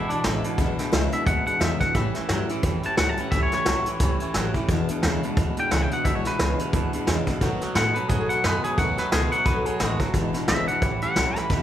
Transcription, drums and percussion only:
0.10 closed hi-hat medium
0.24 snare loud
0.24 closed hi-hat medium
0.44 closed hi-hat medium
0.58 kick loud
0.58 closed hi-hat medium
0.79 snare soft
0.79 closed hi-hat medium
0.93 snare loud
0.93 closed hi-hat medium
1.12 closed hi-hat medium
1.27 kick loud
1.27 closed hi-hat medium
1.47 closed hi-hat medium
1.61 snare loud
1.61 closed hi-hat medium
1.81 kick medium
1.81 snare soft
1.81 closed hi-hat medium
1.95 kick loud
1.95 snare soft
1.95 closed hi-hat medium
2.15 snare soft
2.15 closed hi-hat medium
2.29 snare loud
2.29 closed hi-hat medium
2.49 closed hi-hat medium
2.63 kick loud
2.63 snare soft
2.63 closed hi-hat medium
2.83 closed hi-hat medium
2.97 snare loud
2.97 closed hi-hat medium
3.17 closed hi-hat medium
3.32 kick loud
3.32 snare soft
3.32 closed hi-hat medium
3.52 snare soft
3.52 closed hi-hat medium
3.66 snare loud
3.66 closed hi-hat medium
3.86 closed hi-hat medium
4.00 kick loud
4.00 snare soft
4.00 closed hi-hat medium
4.20 closed hi-hat medium
4.34 snare loud
4.34 closed hi-hat medium
4.54 kick medium
4.54 closed hi-hat medium
4.68 kick loud
4.68 closed hi-hat medium
4.88 closed hi-hat medium
5.03 snare loud
5.03 closed hi-hat medium
5.23 closed hi-hat medium
5.37 kick loud
5.37 snare soft
5.37 closed hi-hat medium
5.57 closed hi-hat medium
5.71 snare loud
5.71 closed hi-hat medium
5.91 closed hi-hat medium
6.05 kick loud
6.05 snare soft
6.05 closed hi-hat medium
6.25 snare soft
6.25 closed hi-hat medium
6.39 snare loud
6.39 closed hi-hat medium
6.59 closed hi-hat medium
6.73 kick loud
6.73 snare soft
6.73 closed hi-hat medium
6.93 closed hi-hat medium
7.07 snare loud
7.07 closed hi-hat medium
7.27 kick medium
7.27 snare soft
7.27 closed hi-hat medium
7.41 kick loud
7.41 snare soft
7.41 closed hi-hat medium
7.61 snare soft
7.61 closed hi-hat medium
7.75 snare loud
7.75 closed hi-hat medium
7.95 closed hi-hat medium
8.09 kick loud
8.09 closed hi-hat medium
8.30 closed hi-hat medium
8.44 snare loud
8.44 closed hi-hat medium
8.64 closed hi-hat medium
8.78 kick loud
8.78 closed hi-hat medium
8.98 snare soft
8.98 closed hi-hat medium
9.12 snare loud
9.12 closed hi-hat medium
9.32 closed hi-hat medium
9.46 kick loud
9.46 snare soft
9.46 closed hi-hat medium
9.66 closed hi-hat medium
9.80 snare loud
9.80 closed hi-hat medium
10.00 kick medium
10.00 snare soft
10.00 closed hi-hat medium
10.14 kick loud
10.14 snare soft
10.14 closed hi-hat medium
10.34 snare soft
10.34 closed hi-hat medium
10.48 snare loud
10.48 closed hi-hat medium
10.68 closed hi-hat medium
10.82 kick loud
10.82 closed hi-hat medium
11.02 closed hi-hat medium
11.16 snare loud
11.16 closed hi-hat medium
11.36 snare soft
11.36 closed hi-hat medium
11.50 kick loud
11.50 snare soft
11.50 closed hi-hat medium

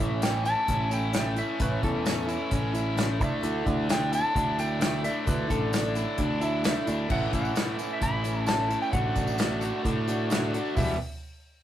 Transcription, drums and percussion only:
0.00 kick medium
0.00 closed hi-hat medium
0.22 snare loud
0.22 closed hi-hat medium
0.22 tambourine medium
0.45 closed hi-hat medium
0.45 tambourine medium
0.68 kick medium
0.68 closed hi-hat medium
0.91 closed hi-hat medium
0.91 tambourine medium
1.13 snare loud
1.13 closed hi-hat loud
1.13 tambourine medium
1.36 closed hi-hat medium
1.36 tambourine medium
1.60 kick loud
1.60 closed hi-hat medium
1.60 tambourine medium
1.83 kick medium
1.83 closed hi-hat medium
2.05 snare loud
2.05 closed hi-hat medium
2.05 tambourine medium
2.29 closed hi-hat medium
2.29 tambourine medium
2.51 kick medium
2.51 closed hi-hat medium
2.75 closed hi-hat medium
2.75 tambourine medium
2.97 snare loud
2.97 closed hi-hat medium
2.97 tambourine medium
3.21 kick loud
3.21 closed hi-hat medium
3.21 tambourine medium
3.43 closed hi-hat medium
3.43 tambourine medium
3.66 kick medium
3.66 closed hi-hat medium
3.89 snare loud
3.89 closed hi-hat medium
3.89 tambourine medium
4.13 closed hi-hat medium
4.13 tambourine medium
4.35 kick medium
4.35 closed hi-hat medium
4.59 closed hi-hat medium
4.59 tambourine medium
4.81 snare loud
4.81 closed hi-hat loud
4.81 tambourine medium
5.04 closed hi-hat medium
5.04 tambourine medium
5.27 kick medium
5.27 closed hi-hat medium
5.27 tambourine medium
5.50 kick medium
5.50 closed hi-hat medium
5.50 tambourine soft
5.73 snare loud
5.73 closed hi-hat medium
5.73 tambourine medium
5.95 closed hi-hat medium
5.95 tambourine medium
6.18 kick medium
6.18 closed hi-hat medium
6.41 closed hi-hat medium
6.41 tambourine medium
6.64 snare loud
6.64 closed hi-hat loud
6.64 tambourine medium
6.87 closed hi-hat medium
6.87 tambourine medium
7.10 kick loud
7.10 crash medium
7.33 kick medium
7.33 closed hi-hat medium
7.33 tambourine medium
7.45 tambourine medium
7.55 snare loud
7.55 closed hi-hat medium
7.55 tambourine medium
7.79 closed hi-hat medium
7.79 tambourine medium
8.02 kick medium
8.02 closed hi-hat medium
8.02 tambourine soft
8.24 closed hi-hat medium
8.24 tambourine medium
8.47 snare loud
8.47 closed hi-hat medium
8.47 tambourine loud
8.70 closed hi-hat medium
8.70 tambourine soft
8.82 tambourine soft
8.93 kick loud
8.93 closed hi-hat medium
9.16 kick medium
9.16 closed hi-hat medium
9.16 tambourine medium
9.27 tambourine medium
9.38 snare loud
9.38 closed hi-hat medium
9.38 tambourine loud
9.61 closed hi-hat medium
9.61 tambourine medium
9.85 kick medium
9.85 closed hi-hat medium
9.85 tambourine soft
10.08 closed hi-hat medium
10.08 tambourine medium
10.30 snare loud
10.30 closed hi-hat medium
10.30 tambourine medium
10.54 closed hi-hat medium
10.54 tambourine soft
10.65 tambourine soft
10.77 kick medium
10.77 floor tom medium
10.77 open hi-hat medium
10.77 tambourine medium

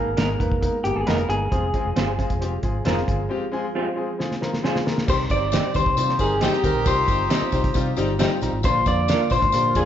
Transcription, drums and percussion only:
0.17 snare loud
0.17 closed hi-hat loud
0.40 kick medium
0.40 closed hi-hat medium
0.52 kick medium
0.63 kick medium
0.63 closed hi-hat loud
0.85 closed hi-hat medium
1.07 snare medium
1.07 closed hi-hat medium
1.18 closed hi-hat soft
1.30 closed hi-hat medium
1.52 kick loud
1.52 closed hi-hat medium
1.74 kick medium
1.74 closed hi-hat medium
1.96 snare loud
1.96 closed hi-hat medium
2.19 kick medium
2.19 closed hi-hat medium
2.30 kick medium
2.30 closed hi-hat medium
2.42 closed hi-hat medium
2.63 kick medium
2.63 closed hi-hat medium
2.85 snare medium
2.85 closed hi-hat medium
2.97 snare soft
3.08 kick medium
3.08 closed hi-hat medium
4.20 snare medium
4.31 snare soft
4.42 snare medium
4.54 snare medium
4.65 snare medium
4.76 snare medium
4.87 snare medium
4.98 snare medium
5.08 kick loud
5.08 crash medium
5.08 tambourine medium
5.30 kick medium
5.30 closed hi-hat medium
5.30 tambourine soft
5.52 snare loud
5.52 closed hi-hat medium
5.52 tambourine medium
5.74 kick medium
5.74 closed hi-hat medium
5.74 tambourine soft
5.86 kick medium
5.97 closed hi-hat loud
5.97 tambourine medium
6.09 snare soft
6.19 kick medium
6.19 closed hi-hat medium
6.19 tambourine medium
6.41 snare loud
6.41 closed hi-hat medium
6.41 tambourine medium
6.53 snare soft
6.64 kick medium
6.64 closed hi-hat medium
6.64 tambourine soft
6.86 kick loud
6.86 closed hi-hat medium
6.86 tambourine medium
7.08 kick medium
7.08 closed hi-hat medium
7.08 tambourine soft
7.30 snare loud
7.30 closed hi-hat loud
7.30 tambourine medium
7.52 kick medium
7.52 closed hi-hat medium
7.52 tambourine soft
7.64 kick medium
7.64 closed hi-hat medium
7.74 kick loud
7.74 closed hi-hat loud
7.74 tambourine medium
7.97 closed hi-hat medium
7.97 tambourine medium
8.19 snare loud
8.19 closed hi-hat medium
8.19 tambourine medium
8.42 closed hi-hat medium
8.42 tambourine soft
8.63 kick loud
8.63 closed hi-hat medium
8.63 tambourine medium
8.86 kick medium
8.86 closed hi-hat medium
8.86 tambourine soft
9.08 snare loud
9.08 closed hi-hat loud
9.08 tambourine medium
9.30 kick medium
9.30 closed hi-hat medium
9.30 tambourine medium
9.42 kick medium
9.42 closed hi-hat medium
9.52 closed hi-hat loud
9.52 tambourine medium
9.75 kick medium
9.75 closed hi-hat medium
9.75 tambourine medium

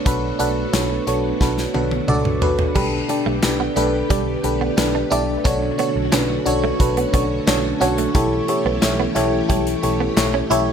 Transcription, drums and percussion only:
0.06 kick loud
0.06 closed hi-hat medium
0.40 closed hi-hat medium
0.73 snare loud
0.73 closed hi-hat medium
1.07 closed hi-hat medium
1.41 kick medium
1.41 snare soft
1.58 snare soft
1.74 high tom medium
1.91 high tom medium
2.08 mid tom medium
2.25 mid tom medium
2.42 floor tom medium
2.59 floor tom medium
2.76 kick loud
2.76 crash medium
3.09 closed hi-hat medium
3.43 snare loud
3.43 clap medium
3.43 closed hi-hat medium
3.77 clap medium
3.77 closed hi-hat medium
4.10 kick medium
4.10 closed hi-hat medium
4.44 closed hi-hat medium
4.78 snare loud
4.78 clap medium
4.78 closed hi-hat medium
5.12 closed hi-hat medium
5.45 kick loud
5.45 closed hi-hat medium
5.79 closed hi-hat medium
6.12 snare loud
6.12 clap medium
6.12 closed hi-hat medium
6.46 closed hi-hat medium
6.80 kick medium
6.80 closed hi-hat medium
6.97 closed hi-hat soft
7.14 kick medium
7.14 closed hi-hat medium
7.48 snare loud
7.48 clap medium
7.48 closed hi-hat medium
7.81 closed hi-hat medium
7.98 closed hi-hat medium
8.15 kick loud
8.15 closed hi-hat medium
8.48 closed hi-hat medium
8.82 snare loud
8.82 clap medium
8.82 closed hi-hat medium
9.16 clap medium
9.16 closed hi-hat medium
9.50 kick medium
9.50 closed hi-hat medium
9.67 closed hi-hat medium
9.83 closed hi-hat medium
10.17 snare loud
10.17 clap medium
10.17 closed hi-hat medium
10.51 closed hi-hat medium

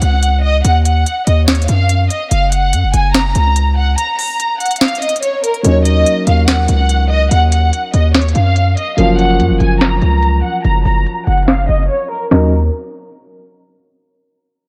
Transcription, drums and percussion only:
0.02 closed hi-hat medium
0.23 closed hi-hat medium
0.65 closed hi-hat medium
0.85 closed hi-hat medium
1.06 closed hi-hat medium
1.27 closed hi-hat medium
1.48 snare loud
1.48 closed hi-hat medium
1.55 closed hi-hat medium
1.62 closed hi-hat medium
1.68 closed hi-hat medium
1.89 closed hi-hat medium
2.10 closed hi-hat medium
2.31 closed hi-hat medium
2.52 closed hi-hat medium
2.73 closed hi-hat medium
2.94 closed hi-hat medium
3.14 snare loud
3.14 closed hi-hat medium
3.35 closed hi-hat medium
3.56 closed hi-hat medium
3.98 closed hi-hat medium
4.19 open hi-hat medium
4.40 closed hi-hat medium
4.60 closed hi-hat medium
4.66 closed hi-hat medium
4.71 closed hi-hat medium
4.76 closed hi-hat medium
4.81 snare loud
4.81 closed hi-hat soft
4.88 closed hi-hat soft
4.95 closed hi-hat medium
5.02 closed hi-hat medium
5.09 closed hi-hat medium
5.16 closed hi-hat medium
5.23 closed hi-hat medium
5.44 closed hi-hat medium
5.54 closed hi-hat soft
5.64 closed hi-hat medium
5.85 closed hi-hat medium
6.06 closed hi-hat medium
6.27 closed hi-hat medium
6.48 snare loud
6.48 closed hi-hat medium
6.68 closed hi-hat medium
6.89 closed hi-hat medium
7.31 closed hi-hat medium
7.52 closed hi-hat medium
7.73 closed hi-hat medium
7.94 closed hi-hat medium
8.15 snare loud
8.15 closed hi-hat medium
8.21 closed hi-hat medium
8.28 closed hi-hat medium
8.35 closed hi-hat medium
8.56 closed hi-hat medium
8.77 closed hi-hat medium
8.98 closed hi-hat medium
9.19 closed hi-hat medium
9.40 closed hi-hat medium
9.60 closed hi-hat medium
9.81 snare loud
9.81 closed hi-hat medium
10.02 closed hi-hat medium
10.23 closed hi-hat medium
10.64 closed hi-hat medium
10.85 open hi-hat medium
11.06 closed hi-hat medium
11.27 closed hi-hat medium
11.32 closed hi-hat medium
11.37 closed hi-hat medium
11.43 closed hi-hat medium
11.48 snare loud
11.48 closed hi-hat soft
11.55 closed hi-hat soft
11.62 closed hi-hat medium
11.69 closed hi-hat medium
11.76 closed hi-hat medium
11.83 closed hi-hat medium
12.31 snare loud

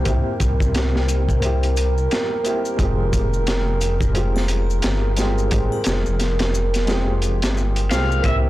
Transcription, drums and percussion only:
0.05 kick medium
0.05 closed hi-hat medium
0.05 maracas soft
0.40 kick loud
0.40 closed hi-hat medium
0.40 maracas medium
0.60 kick medium
0.60 maracas medium
0.75 snare loud
0.75 closed hi-hat medium
0.75 maracas soft
0.96 snare soft
1.08 closed hi-hat medium
1.08 maracas loud
1.29 kick medium
1.29 maracas soft
1.42 closed hi-hat medium
1.42 maracas soft
1.63 closed hi-hat soft
1.77 closed hi-hat medium
1.77 maracas medium
1.98 maracas soft
2.11 snare loud
2.11 closed hi-hat medium
2.11 maracas soft
2.45 closed hi-hat medium
2.45 maracas medium
2.65 maracas medium
2.79 kick loud
2.79 closed hi-hat medium
2.79 maracas soft
3.13 kick medium
3.13 closed hi-hat medium
3.13 maracas medium
3.33 maracas soft
3.47 snare loud
3.47 closed hi-hat medium
3.47 maracas soft
3.81 closed hi-hat medium
3.81 maracas medium
4.01 kick medium
4.01 maracas soft
4.15 closed hi-hat medium
4.15 maracas soft
4.36 snare soft
4.36 triangle medium
4.48 closed hi-hat medium
4.48 maracas medium
4.70 maracas soft
4.82 snare loud
4.82 closed hi-hat medium
4.82 maracas soft
5.16 snare soft
5.16 closed hi-hat medium
5.16 maracas medium
5.38 maracas soft
5.51 kick loud
5.51 closed hi-hat medium
5.51 maracas soft
5.72 triangle medium
5.84 snare loud
5.84 closed hi-hat medium
5.84 maracas medium
6.06 maracas soft
6.19 snare soft
6.19 closed hi-hat medium
6.19 maracas soft
6.39 snare loud
6.39 closed hi-hat medium
6.54 maracas medium
6.74 snare soft
6.74 closed hi-hat medium
6.74 maracas soft
6.87 snare loud
6.87 closed hi-hat medium
6.87 maracas soft
7.22 closed hi-hat medium
7.22 maracas medium
7.42 snare loud
7.42 closed hi-hat medium
7.42 maracas soft
7.57 maracas soft
7.76 closed hi-hat medium
7.91 snare loud
7.91 closed hi-hat medium
7.91 maracas medium
8.12 maracas soft
8.24 kick loud
8.24 closed hi-hat medium

